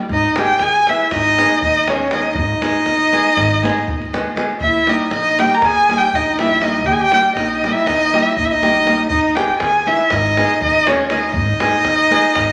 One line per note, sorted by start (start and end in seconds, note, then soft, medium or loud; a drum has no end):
0.09 0.26 G#1 medium
0.09 0.36 D#4 loud
0.09 0.37 D#5 medium
0.09 davul low medium
0.22 davul high soft
0.36 0.51 G#3 medium
0.36 0.52 B3 medium
0.36 0.52 D#4 medium
0.36 0.65 G4 medium
0.36 0.52 G#4 medium
0.36 davul high medium
0.40 0.63 G5 medium
0.59 0.91 D#2 medium
0.59 0.91 G#5 loud
0.59 davul high medium
0.64 0.92 G#4 medium
0.87 1.02 G#3 medium
0.87 1.03 B3 medium
0.87 1.03 D#4 soft
0.87 1.15 E4 medium
0.87 1.03 G#4 medium
0.87 1.13 E5 medium
0.87 davul high medium
0.99 davul high soft
1.11 1.42 G#1 medium
1.11 1.64 D#4 loud
1.11 1.62 D#5 loud
1.11 davul high medium
1.11 davul low medium
1.24 davul high soft
1.38 1.53 G#3 medium
1.38 1.53 B3 medium
1.38 1.53 D#4 medium
1.38 1.54 G#4 medium
1.38 davul high medium
1.50 davul high soft
1.62 2.37 D#2 medium
1.62 1.93 D#4 medium
1.62 1.91 D#5 medium
1.62 davul low medium
1.76 davul high soft
1.88 2.03 G#3 medium
1.88 2.03 B3 medium
1.88 2.03 D#4 medium
1.88 2.03 G#4 medium
1.88 2.14 C#5 medium
1.88 davul high medium
1.92 2.15 C#4 medium
2.11 2.26 G#3 soft
2.11 2.26 B3 soft
2.11 2.26 D#4 soft
2.11 2.36 D#4 medium
2.11 2.27 G#4 medium
2.11 2.35 D#5 medium
2.11 davul high medium
2.23 davul high soft
2.35 2.52 G#1 medium
2.35 4.34 D#4 medium
2.35 4.33 D#5 loud
2.35 davul low loud
2.48 davul high soft
2.61 2.76 G#3 medium
2.61 2.76 B3 medium
2.61 2.77 D#4 medium
2.61 2.77 G#4 medium
2.61 davul high medium
2.86 3.16 D#2 medium
2.86 davul high medium
3.12 3.27 G#3 medium
3.12 3.27 B3 medium
3.12 3.28 D#4 medium
3.12 3.28 G#4 medium
3.12 davul high medium
3.25 davul high soft
3.37 3.67 G#1 loud
3.37 davul high medium
3.37 davul low medium
3.51 davul high soft
3.63 3.78 G#3 medium
3.63 3.78 B3 medium
3.63 3.79 D#4 medium
3.63 3.79 G#4 medium
3.63 davul high medium
3.78 davul high soft
3.87 4.31 D#2 medium
3.87 davul low medium
4.02 davul high soft
4.13 4.28 G#3 medium
4.13 4.28 B3 medium
4.13 4.28 D#4 medium
4.13 4.29 G#4 medium
4.13 davul high medium
4.36 4.51 G#3 medium
4.36 4.51 B3 medium
4.36 4.51 D#4 medium
4.36 4.52 G#4 medium
4.36 davul high medium
4.49 davul high soft
4.60 4.77 D#2 loud
4.60 4.94 E4 medium
4.60 4.91 E5 medium
4.60 davul low medium
4.74 davul high soft
4.87 5.02 G3 medium
4.87 5.02 A#3 medium
4.87 5.02 D#4 medium
4.87 5.03 G4 medium
4.87 5.12 D#5 medium
4.87 davul high medium
4.92 5.13 D#4 medium
5.11 5.41 A#1 medium
5.11 5.41 D#5 loud
5.11 davul high medium
5.15 5.43 D#4 medium
5.38 5.53 G3 medium
5.38 5.53 A#3 medium
5.38 5.53 D#4 medium
5.38 5.54 G4 medium
5.38 5.59 G4 medium
5.38 5.56 G5 loud
5.38 davul high medium
5.50 davul high soft
5.54 5.66 A#4 medium
5.54 5.66 A#5 medium
5.62 5.93 D#2 medium
5.62 6.01 G#4 loud
5.62 6.00 G#5 loud
5.62 davul high medium
5.62 davul low medium
5.76 davul high soft
5.88 6.03 G3 medium
5.88 6.03 A#3 medium
5.88 6.04 D#4 medium
5.88 6.04 G4 medium
5.88 davul high medium
5.98 6.17 G4 medium
5.98 6.16 G5 loud
6.13 6.85 A#1 medium
6.13 6.40 D#4 medium
6.13 6.39 D#5 medium
6.13 davul low medium
6.26 davul high soft
6.38 6.53 G3 medium
6.38 6.53 A#3 medium
6.38 6.53 D#4 medium
6.38 6.65 E4 medium
6.38 6.53 G4 medium
6.38 6.64 E5 medium
6.38 davul high medium
6.61 6.76 G3 soft
6.61 6.76 A#3 soft
6.61 6.76 D#4 medium
6.61 6.87 D#4 medium
6.61 6.77 G4 medium
6.61 6.88 D#5 medium
6.61 davul high medium
6.73 davul high soft
6.84 7.01 D#2 medium
6.84 6.93 G4 medium
6.84 6.94 G5 medium
6.84 davul low medium
6.91 7.01 G#4 medium
6.91 7.02 G#5 medium
6.98 7.12 G4 medium
6.98 7.13 G5 loud
6.98 davul high soft
7.11 7.26 G3 medium
7.11 7.26 A#3 medium
7.11 7.27 D#4 medium
7.11 7.27 G4 medium
7.11 7.35 G4 medium
7.11 7.35 G5 medium
7.11 davul high medium
7.35 7.66 A#1 medium
7.35 7.75 D#4 medium
7.35 7.73 D#5 medium
7.35 davul high medium
7.50 davul high soft
7.63 7.77 G3 medium
7.63 7.78 A#3 soft
7.63 7.78 D#4 soft
7.63 7.78 G4 medium
7.63 davul high medium
7.71 7.89 E4 medium
7.71 7.88 E5 medium
7.86 8.17 D#2 medium
7.86 8.25 D#4 medium
7.86 8.24 D#5 loud
7.86 davul high medium
7.86 davul low medium
8.13 8.28 G3 medium
8.13 8.28 A#3 medium
8.13 8.29 D#4 medium
8.13 8.29 G4 medium
8.13 davul high medium
8.22 8.38 E4 medium
8.22 8.37 E5 medium
8.27 davul high soft
8.37 9.08 A#1 medium
8.37 8.47 D#4 medium
8.37 8.46 D#5 loud
8.37 davul low medium
8.45 8.55 E4 medium
8.45 8.53 E5 medium
8.51 9.09 D#4 medium
8.51 9.09 D#5 loud
8.51 davul high soft
8.62 8.77 G3 soft
8.62 8.77 A#3 medium
8.62 8.77 D#4 soft
8.62 8.78 G4 medium
8.62 davul high medium
8.75 davul high soft
8.85 9.00 G3 medium
8.85 9.00 A#3 medium
8.85 9.00 D#4 medium
8.85 9.01 G4 medium
8.85 davul high medium
8.99 davul high soft
9.08 9.25 G#1 medium
9.08 9.38 D#4 loud
9.08 9.37 D#5 medium
9.08 davul low loud
9.23 davul high soft
9.35 9.50 G#3 medium
9.35 9.51 B3 medium
9.35 9.51 D#4 medium
9.35 9.59 G4 medium
9.35 9.51 G#4 medium
9.35 9.59 G5 medium
9.35 davul high medium
9.59 9.91 D#2 medium
9.59 9.89 G#4 medium
9.59 9.88 G#5 medium
9.59 davul high medium
9.86 10.01 G#3 medium
9.86 10.01 B3 soft
9.86 10.01 D#4 medium
9.86 10.13 E4 medium
9.86 10.02 G#4 medium
9.86 10.12 E5 medium
9.86 davul high medium
9.99 davul high soft
10.10 10.41 G#1 medium
10.10 10.62 D#4 medium
10.10 10.62 D#5 medium
10.10 davul high medium
10.10 davul low medium
10.24 davul high soft
10.37 10.52 G#3 medium
10.37 10.52 B3 medium
10.37 10.53 D#4 medium
10.37 10.53 G#4 medium
10.37 davul high medium
10.50 davul high soft
10.61 11.35 D#2 loud
10.61 10.90 D#4 medium
10.61 10.90 D#5 loud
10.61 davul low medium
10.75 davul high soft
10.86 11.01 G#3 medium
10.86 11.01 B3 soft
10.86 11.13 C#4 medium
10.86 11.02 D#4 medium
10.86 11.02 G#4 medium
10.86 11.12 C#5 medium
10.86 davul high medium
11.10 11.25 G#3 medium
11.10 11.25 B3 medium
11.10 11.34 D#4 medium
11.10 11.25 D#4 soft
11.10 11.25 G#4 medium
11.10 11.33 D#5 medium
11.10 davul high medium
11.22 davul high soft
11.33 11.50 G#1 loud
11.33 12.52 D#4 medium
11.33 12.52 D#5 loud
11.33 davul low loud
11.47 davul high soft
11.60 11.75 G#3 medium
11.60 11.75 B3 medium
11.60 11.76 D#4 medium
11.60 11.76 G#4 medium
11.60 davul high medium
11.84 12.15 D#2 medium
11.84 davul high medium
12.10 12.25 G#3 medium
12.10 12.26 B3 medium
12.10 12.26 D#4 medium
12.10 12.26 G#4 medium
12.10 davul high medium
12.24 davul high soft
12.35 12.52 G#1 medium
12.35 davul high medium
12.35 davul low medium